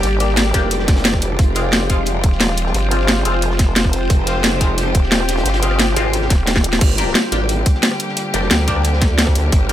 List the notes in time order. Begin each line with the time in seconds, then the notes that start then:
Already playing: D3 G3 A#3 G4 D5 G5
0.03 G#1, closed hi-hat
0.20 A#3 D4 G4, closed hi-hat
0.29 snare
0.37 snare, closed hi-hat
0.45 snare
0.54 F1 A#3 D4 G4, kick, snare, closed hi-hat
0.63 cross-stick
0.71 closed hi-hat
0.79 snare
0.88 kick, snare, closed hi-hat
0.96 snare, closed hi-hat
1.05 snare, closed hi-hat
1.13 kick, cross-stick, snare
1.22 closed hi-hat
1.39 F1 C3 F3 G#3 F4, kick, closed hi-hat
1.55 G#3 C4 F4, closed hi-hat
1.72 snare, closed hi-hat
1.87 G#3 C4 F4 C5, kick, closed hi-hat
2.06 closed hi-hat
2.24 D#1, kick, closed hi-hat
2.32 snare
2.40 snare, closed hi-hat
2.48 cross-stick, snare
2.58 closed hi-hat
2.66 snare
2.74 G1, closed hi-hat
2.91 G#3 C4 F4, closed hi-hat
3.01 snare
3.08 snare, closed hi-hat
3.17 snare
3.25 F1 G#3 C4 F4, snare, closed hi-hat
3.34 cross-stick
3.42 closed hi-hat
3.50 snare
3.59 kick, snare, closed hi-hat
3.76 snare, closed hi-hat
3.85 kick, cross-stick, snare
3.93 closed hi-hat
4.10 F1 G4, kick, closed hi-hat
4.27 G#3 C4 F4, closed hi-hat
4.44 snare, closed hi-hat
4.61 G#3 C4 F4, kick, closed hi-hat
4.78 closed hi-hat
4.94 D#1, kick, closed hi-hat
5.03 snare
5.12 snare, closed hi-hat
5.20 cross-stick, snare
5.29 snare, closed hi-hat
5.37 snare, closed hi-hat
5.45 G1, snare, closed hi-hat
5.54 snare, closed hi-hat
5.63 G#3 C4 F4, closed hi-hat
5.71 cross-stick, snare
5.79 snare, closed hi-hat
5.88 snare
5.96 G#1 G#3 C4 F4, snare, closed hi-hat
6.05 cross-stick
6.13 closed hi-hat
6.22 snare
6.30 D#1, kick, snare, closed hi-hat
6.47 snare, closed hi-hat
6.55 kick, snare
6.64 closed hi-hat
6.73 snare
6.81 G1 D3 G3 A#3 G4, kick, closed hi-hat, crash
6.98 A#3 D4 G4, closed hi-hat
7.15 snare, closed hi-hat
7.32 G#1 A#3 D4 G4, closed hi-hat
7.49 closed hi-hat
7.66 kick, closed hi-hat
7.74 snare
7.82 snare, closed hi-hat
7.91 cross-stick, snare
8.00 closed hi-hat
8.08 snare
8.17 closed hi-hat
8.34 F1 A#3 D4 G4, closed hi-hat
8.42 snare
8.51 D2, snare, closed hi-hat
8.59 snare
8.67 A#3 D4 G4, kick, snare, closed hi-hat
8.76 cross-stick
8.84 closed hi-hat
8.93 snare
9.01 kick, snare, closed hi-hat
9.18 snare, closed hi-hat
9.27 kick, cross-stick, snare
9.35 D2, closed hi-hat
9.52 G1, kick, closed hi-hat
9.69 A#3 D4 G4, closed hi-hat